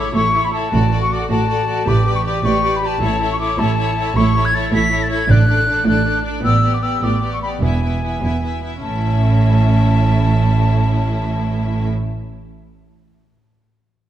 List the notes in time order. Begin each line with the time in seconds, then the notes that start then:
Already playing: A2 E4 A4 C#5 D6
0.13 A1 A2 E4 A4 C#5 C#6
0.33 E4 A4 C#5
0.44 B5
0.53 E4 A4 C#5 A5
0.71 A1 A2 F#4 A4 D5
0.91 F#4 A4 D5
1.01 C#6
1.10 F#4 A4 D5 D6
1.30 A1 A2 F#4 A4 D5 A5
1.49 F#4 A4 D5
1.67 F#4 A4 D5
1.86 A1 A2 G4 B4 D5 D6
2.05 G4 B4 D5
2.15 C#6
2.25 G4 B4 D5 D6
2.43 A1 A2 G4 B4 D5 C#6
2.63 G4 B4 D5
2.76 B5
2.82 G4 B4 D5 A5
3.01 A1 A2 E4 A4 C#5
3.20 E4 A4 C#5
3.32 C#6
3.39 E4 A4 C#5 D6
3.58 A1 A2 E4 A4 C#5 A5
3.77 E4 A4 C#5
3.96 E4 C#5
4.00 A4
4.16 A1 A2 E4 A4 C#5 C#6
4.36 E4 A4 C#5
4.44 G#6
4.53 E4 A4 C#5 A6
4.71 A1 A2 E4 A4 C#5 B6
4.91 E4 A4 C#5
5.02 A6
5.09 E4 A4 C#5 G#6
5.28 A1 A2 D4 A4 D5 F#6
5.47 D4 A4 D5
5.68 D4 A4 D5
5.86 A1 A2 D4 A4 D5 F#6
6.06 D4 A4 D5
6.24 D4 A4 D5
6.43 A1 A2 B3 G4 D5 E6
6.61 B3 G4 D5
6.73 D6
6.82 B3 G4 D5 E6
7.02 A1 A2 B3 G4 D5 D6
7.20 B3 G4 D5
7.33 C#6
7.41 B3 G4 D5 B5
7.61 E1 E2 B3 E4 E5 G#5
7.83 B3 E4 E5
8.03 B3 E4 E5
8.22 E1 E2 B3 E4 E5
8.43 B3 E4 E5
8.62 B3 E4 E5
8.81 A1 A2 C#4 E4 E5 A5